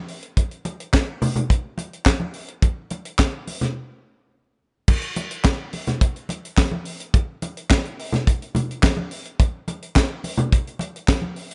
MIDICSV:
0, 0, Header, 1, 2, 480
1, 0, Start_track
1, 0, Tempo, 563910
1, 317, Time_signature, 4, 2, 24, 8
1, 9826, End_track
2, 0, Start_track
2, 0, Title_t, "Drums"
2, 70, Note_on_c, 9, 46, 48
2, 155, Note_off_c, 9, 46, 0
2, 192, Note_on_c, 9, 42, 49
2, 277, Note_off_c, 9, 42, 0
2, 315, Note_on_c, 9, 36, 93
2, 315, Note_on_c, 9, 42, 79
2, 318, Note_on_c, 9, 62, 51
2, 400, Note_off_c, 9, 36, 0
2, 400, Note_off_c, 9, 42, 0
2, 403, Note_off_c, 9, 62, 0
2, 435, Note_on_c, 9, 42, 33
2, 520, Note_off_c, 9, 42, 0
2, 553, Note_on_c, 9, 42, 60
2, 554, Note_on_c, 9, 62, 58
2, 638, Note_off_c, 9, 42, 0
2, 639, Note_off_c, 9, 62, 0
2, 681, Note_on_c, 9, 42, 51
2, 766, Note_off_c, 9, 42, 0
2, 792, Note_on_c, 9, 63, 88
2, 796, Note_on_c, 9, 42, 78
2, 797, Note_on_c, 9, 36, 117
2, 799, Note_on_c, 9, 39, 85
2, 802, Note_on_c, 9, 38, 113
2, 877, Note_off_c, 9, 63, 0
2, 881, Note_off_c, 9, 42, 0
2, 882, Note_off_c, 9, 36, 0
2, 884, Note_off_c, 9, 39, 0
2, 887, Note_off_c, 9, 38, 0
2, 1036, Note_on_c, 9, 64, 90
2, 1038, Note_on_c, 9, 46, 67
2, 1121, Note_off_c, 9, 64, 0
2, 1123, Note_off_c, 9, 46, 0
2, 1154, Note_on_c, 9, 64, 77
2, 1158, Note_on_c, 9, 42, 45
2, 1240, Note_off_c, 9, 64, 0
2, 1243, Note_off_c, 9, 42, 0
2, 1277, Note_on_c, 9, 36, 101
2, 1284, Note_on_c, 9, 42, 79
2, 1363, Note_off_c, 9, 36, 0
2, 1369, Note_off_c, 9, 42, 0
2, 1512, Note_on_c, 9, 62, 60
2, 1519, Note_on_c, 9, 42, 66
2, 1597, Note_off_c, 9, 62, 0
2, 1604, Note_off_c, 9, 42, 0
2, 1644, Note_on_c, 9, 42, 38
2, 1729, Note_off_c, 9, 42, 0
2, 1753, Note_on_c, 9, 36, 107
2, 1753, Note_on_c, 9, 39, 80
2, 1756, Note_on_c, 9, 38, 100
2, 1758, Note_on_c, 9, 63, 66
2, 1761, Note_on_c, 9, 42, 75
2, 1838, Note_off_c, 9, 39, 0
2, 1839, Note_off_c, 9, 36, 0
2, 1841, Note_off_c, 9, 38, 0
2, 1843, Note_off_c, 9, 63, 0
2, 1846, Note_off_c, 9, 42, 0
2, 1871, Note_on_c, 9, 63, 69
2, 1956, Note_off_c, 9, 63, 0
2, 1987, Note_on_c, 9, 46, 50
2, 2072, Note_off_c, 9, 46, 0
2, 2113, Note_on_c, 9, 42, 50
2, 2198, Note_off_c, 9, 42, 0
2, 2233, Note_on_c, 9, 42, 76
2, 2234, Note_on_c, 9, 36, 109
2, 2240, Note_on_c, 9, 62, 48
2, 2318, Note_off_c, 9, 42, 0
2, 2319, Note_off_c, 9, 36, 0
2, 2326, Note_off_c, 9, 62, 0
2, 2470, Note_on_c, 9, 42, 59
2, 2478, Note_on_c, 9, 62, 50
2, 2555, Note_off_c, 9, 42, 0
2, 2563, Note_off_c, 9, 62, 0
2, 2597, Note_on_c, 9, 42, 52
2, 2682, Note_off_c, 9, 42, 0
2, 2712, Note_on_c, 9, 42, 75
2, 2713, Note_on_c, 9, 63, 73
2, 2715, Note_on_c, 9, 36, 121
2, 2716, Note_on_c, 9, 39, 80
2, 2718, Note_on_c, 9, 38, 108
2, 2797, Note_off_c, 9, 42, 0
2, 2798, Note_off_c, 9, 63, 0
2, 2800, Note_off_c, 9, 36, 0
2, 2801, Note_off_c, 9, 39, 0
2, 2803, Note_off_c, 9, 38, 0
2, 2956, Note_on_c, 9, 46, 69
2, 2957, Note_on_c, 9, 62, 39
2, 3041, Note_off_c, 9, 46, 0
2, 3042, Note_off_c, 9, 62, 0
2, 3075, Note_on_c, 9, 64, 76
2, 3078, Note_on_c, 9, 42, 46
2, 3084, Note_on_c, 9, 38, 35
2, 3160, Note_off_c, 9, 64, 0
2, 3163, Note_off_c, 9, 42, 0
2, 3169, Note_off_c, 9, 38, 0
2, 4154, Note_on_c, 9, 49, 100
2, 4155, Note_on_c, 9, 36, 112
2, 4164, Note_on_c, 9, 62, 48
2, 4239, Note_off_c, 9, 49, 0
2, 4240, Note_off_c, 9, 36, 0
2, 4249, Note_off_c, 9, 62, 0
2, 4269, Note_on_c, 9, 42, 33
2, 4354, Note_off_c, 9, 42, 0
2, 4392, Note_on_c, 9, 42, 66
2, 4396, Note_on_c, 9, 62, 56
2, 4477, Note_off_c, 9, 42, 0
2, 4481, Note_off_c, 9, 62, 0
2, 4517, Note_on_c, 9, 42, 53
2, 4602, Note_off_c, 9, 42, 0
2, 4632, Note_on_c, 9, 63, 84
2, 4633, Note_on_c, 9, 42, 80
2, 4637, Note_on_c, 9, 36, 122
2, 4637, Note_on_c, 9, 39, 86
2, 4640, Note_on_c, 9, 38, 119
2, 4718, Note_off_c, 9, 63, 0
2, 4719, Note_off_c, 9, 42, 0
2, 4722, Note_off_c, 9, 36, 0
2, 4722, Note_off_c, 9, 39, 0
2, 4725, Note_off_c, 9, 38, 0
2, 4874, Note_on_c, 9, 46, 71
2, 4881, Note_on_c, 9, 62, 44
2, 4960, Note_off_c, 9, 46, 0
2, 4966, Note_off_c, 9, 62, 0
2, 4994, Note_on_c, 9, 42, 47
2, 4999, Note_on_c, 9, 64, 75
2, 5000, Note_on_c, 9, 38, 39
2, 5080, Note_off_c, 9, 42, 0
2, 5084, Note_off_c, 9, 64, 0
2, 5085, Note_off_c, 9, 38, 0
2, 5118, Note_on_c, 9, 36, 106
2, 5121, Note_on_c, 9, 42, 81
2, 5203, Note_off_c, 9, 36, 0
2, 5206, Note_off_c, 9, 42, 0
2, 5242, Note_on_c, 9, 42, 35
2, 5327, Note_off_c, 9, 42, 0
2, 5354, Note_on_c, 9, 62, 65
2, 5360, Note_on_c, 9, 42, 73
2, 5439, Note_off_c, 9, 62, 0
2, 5445, Note_off_c, 9, 42, 0
2, 5488, Note_on_c, 9, 42, 44
2, 5574, Note_off_c, 9, 42, 0
2, 5597, Note_on_c, 9, 36, 124
2, 5598, Note_on_c, 9, 39, 85
2, 5600, Note_on_c, 9, 38, 112
2, 5601, Note_on_c, 9, 63, 71
2, 5606, Note_on_c, 9, 42, 76
2, 5682, Note_off_c, 9, 36, 0
2, 5683, Note_off_c, 9, 39, 0
2, 5686, Note_off_c, 9, 38, 0
2, 5687, Note_off_c, 9, 63, 0
2, 5691, Note_off_c, 9, 42, 0
2, 5715, Note_on_c, 9, 63, 74
2, 5801, Note_off_c, 9, 63, 0
2, 5832, Note_on_c, 9, 46, 52
2, 5917, Note_off_c, 9, 46, 0
2, 5958, Note_on_c, 9, 42, 55
2, 6043, Note_off_c, 9, 42, 0
2, 6077, Note_on_c, 9, 36, 115
2, 6077, Note_on_c, 9, 42, 78
2, 6081, Note_on_c, 9, 62, 52
2, 6162, Note_off_c, 9, 36, 0
2, 6162, Note_off_c, 9, 42, 0
2, 6166, Note_off_c, 9, 62, 0
2, 6316, Note_on_c, 9, 42, 60
2, 6319, Note_on_c, 9, 62, 56
2, 6401, Note_off_c, 9, 42, 0
2, 6404, Note_off_c, 9, 62, 0
2, 6443, Note_on_c, 9, 42, 52
2, 6528, Note_off_c, 9, 42, 0
2, 6553, Note_on_c, 9, 63, 89
2, 6557, Note_on_c, 9, 42, 79
2, 6559, Note_on_c, 9, 36, 122
2, 6561, Note_on_c, 9, 39, 89
2, 6563, Note_on_c, 9, 38, 117
2, 6638, Note_off_c, 9, 63, 0
2, 6642, Note_off_c, 9, 42, 0
2, 6644, Note_off_c, 9, 36, 0
2, 6646, Note_off_c, 9, 39, 0
2, 6648, Note_off_c, 9, 38, 0
2, 6684, Note_on_c, 9, 42, 34
2, 6769, Note_off_c, 9, 42, 0
2, 6804, Note_on_c, 9, 46, 72
2, 6889, Note_off_c, 9, 46, 0
2, 6916, Note_on_c, 9, 64, 88
2, 6926, Note_on_c, 9, 42, 49
2, 6931, Note_on_c, 9, 38, 43
2, 7001, Note_off_c, 9, 64, 0
2, 7011, Note_off_c, 9, 42, 0
2, 7017, Note_off_c, 9, 38, 0
2, 7042, Note_on_c, 9, 36, 100
2, 7047, Note_on_c, 9, 42, 80
2, 7127, Note_off_c, 9, 36, 0
2, 7132, Note_off_c, 9, 42, 0
2, 7167, Note_on_c, 9, 42, 36
2, 7252, Note_off_c, 9, 42, 0
2, 7275, Note_on_c, 9, 62, 60
2, 7275, Note_on_c, 9, 64, 88
2, 7284, Note_on_c, 9, 42, 67
2, 7361, Note_off_c, 9, 62, 0
2, 7361, Note_off_c, 9, 64, 0
2, 7370, Note_off_c, 9, 42, 0
2, 7411, Note_on_c, 9, 42, 41
2, 7496, Note_off_c, 9, 42, 0
2, 7517, Note_on_c, 9, 63, 80
2, 7518, Note_on_c, 9, 36, 114
2, 7519, Note_on_c, 9, 39, 96
2, 7521, Note_on_c, 9, 38, 105
2, 7527, Note_on_c, 9, 42, 78
2, 7602, Note_off_c, 9, 63, 0
2, 7603, Note_off_c, 9, 36, 0
2, 7604, Note_off_c, 9, 39, 0
2, 7606, Note_off_c, 9, 38, 0
2, 7612, Note_off_c, 9, 42, 0
2, 7632, Note_on_c, 9, 63, 74
2, 7717, Note_off_c, 9, 63, 0
2, 7753, Note_on_c, 9, 46, 54
2, 7838, Note_off_c, 9, 46, 0
2, 7877, Note_on_c, 9, 42, 49
2, 7962, Note_off_c, 9, 42, 0
2, 7998, Note_on_c, 9, 36, 108
2, 8000, Note_on_c, 9, 42, 78
2, 8001, Note_on_c, 9, 62, 53
2, 8083, Note_off_c, 9, 36, 0
2, 8085, Note_off_c, 9, 42, 0
2, 8086, Note_off_c, 9, 62, 0
2, 8237, Note_on_c, 9, 62, 59
2, 8238, Note_on_c, 9, 42, 59
2, 8323, Note_off_c, 9, 42, 0
2, 8323, Note_off_c, 9, 62, 0
2, 8362, Note_on_c, 9, 42, 46
2, 8447, Note_off_c, 9, 42, 0
2, 8473, Note_on_c, 9, 63, 89
2, 8476, Note_on_c, 9, 42, 79
2, 8478, Note_on_c, 9, 36, 111
2, 8480, Note_on_c, 9, 39, 95
2, 8482, Note_on_c, 9, 38, 117
2, 8558, Note_off_c, 9, 63, 0
2, 8561, Note_off_c, 9, 42, 0
2, 8563, Note_off_c, 9, 36, 0
2, 8565, Note_off_c, 9, 39, 0
2, 8568, Note_off_c, 9, 38, 0
2, 8715, Note_on_c, 9, 62, 44
2, 8716, Note_on_c, 9, 46, 68
2, 8800, Note_off_c, 9, 62, 0
2, 8801, Note_off_c, 9, 46, 0
2, 8831, Note_on_c, 9, 64, 91
2, 8841, Note_on_c, 9, 42, 49
2, 8916, Note_off_c, 9, 64, 0
2, 8926, Note_off_c, 9, 42, 0
2, 8958, Note_on_c, 9, 36, 101
2, 8962, Note_on_c, 9, 42, 77
2, 9044, Note_off_c, 9, 36, 0
2, 9047, Note_off_c, 9, 42, 0
2, 9084, Note_on_c, 9, 42, 34
2, 9169, Note_off_c, 9, 42, 0
2, 9187, Note_on_c, 9, 62, 63
2, 9198, Note_on_c, 9, 42, 70
2, 9272, Note_off_c, 9, 62, 0
2, 9283, Note_off_c, 9, 42, 0
2, 9327, Note_on_c, 9, 42, 42
2, 9412, Note_off_c, 9, 42, 0
2, 9435, Note_on_c, 9, 36, 117
2, 9435, Note_on_c, 9, 39, 85
2, 9435, Note_on_c, 9, 63, 76
2, 9437, Note_on_c, 9, 38, 108
2, 9443, Note_on_c, 9, 42, 75
2, 9520, Note_off_c, 9, 36, 0
2, 9520, Note_off_c, 9, 39, 0
2, 9520, Note_off_c, 9, 63, 0
2, 9523, Note_off_c, 9, 38, 0
2, 9528, Note_off_c, 9, 42, 0
2, 9547, Note_on_c, 9, 63, 72
2, 9633, Note_off_c, 9, 63, 0
2, 9670, Note_on_c, 9, 46, 49
2, 9755, Note_off_c, 9, 46, 0
2, 9796, Note_on_c, 9, 42, 57
2, 9826, Note_off_c, 9, 42, 0
2, 9826, End_track
0, 0, End_of_file